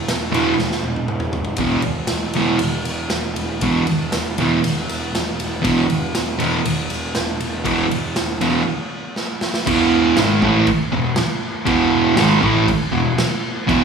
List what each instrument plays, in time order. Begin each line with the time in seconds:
0.08 picked electric bass E1, snare, ride
0.31 distorted electric guitar E2 B2 E3, ride
0.59 picked electric bass E1, snare
0.71 snare
0.83 picked electric bass E1, high tom
0.96 high tom
1.08 picked electric bass E1, mid tom
1.20 mid tom
1.33 picked electric bass E1, floor tom
1.45 floor tom
1.57 picked electric bass E1, distorted electric guitar E2, kick, ride
1.61 distorted electric guitar B2 E3
1.82 picked electric bass E1, ride
2.07 picked electric bass E1, snare, ride
2.33 distorted electric guitar E2 B2 E3, ride
2.59 picked electric bass E1, ride
2.84 picked electric bass E1, ride
3.10 picked electric bass E1, snare, ride
3.36 picked electric bass E1, ride
3.61 picked electric bass E1, distorted electric guitar E2 B2 E3, kick, ride
3.87 picked electric bass E1, ride
4.12 picked electric bass E1, snare, ride
4.38 distorted electric guitar E2 B2 E3, ride
4.63 picked electric bass E1, ride
4.88 picked electric bass E1, ride
5.13 picked electric bass E1, snare, ride
5.40 picked electric bass E1, ride
5.62 distorted electric guitar E2 B2 E3, kick, ride
5.66 picked electric bass E1
5.89 picked electric bass E1, ride
6.14 picked electric bass E1, snare, ride
6.39 distorted electric guitar E2 B2 E3, ride
6.65 picked electric bass E1, ride
6.90 picked electric bass E1, ride
7.15 picked electric bass E1, snare, ride
7.40 picked electric bass E1, ride
7.64 picked electric bass E1, distorted electric guitar E2 B2 E3, kick, ride
7.91 picked electric bass E1, ride
8.16 picked electric bass E1, snare, ride
8.41 distorted electric guitar E2 B2 E3, ride
9.16 snare
9.41 snare
9.54 snare
9.66 picked electric bass E1, distorted electric guitar E2 B2 E3, kick, crash
10.16 picked electric bass G#1, distorted electric guitar G#2 D#3 G#3, snare, crash
10.42 picked electric bass A1, distorted electric guitar A2 E3 A3, kick
10.67 kick, crash
10.91 picked electric bass E1, distorted electric guitar E2 B2
11.16 muted distorted electric guitar stroke, muted picked electric bass stroke, snare, crash
11.65 picked electric bass E1, distorted electric guitar E2 B2 E3, kick, crash
12.15 picked electric bass G#1, distorted electric guitar G#2 D#3 G#3, snare, crash
12.41 picked electric bass A1, distorted electric guitar A2 E3 A3, kick
12.68 kick, crash
12.92 picked electric bass E1, distorted electric guitar E2 B2
13.18 muted distorted electric guitar stroke, muted picked electric bass stroke, snare, crash
13.67 picked electric bass E1, distorted electric guitar E2 B2 E3, kick, crash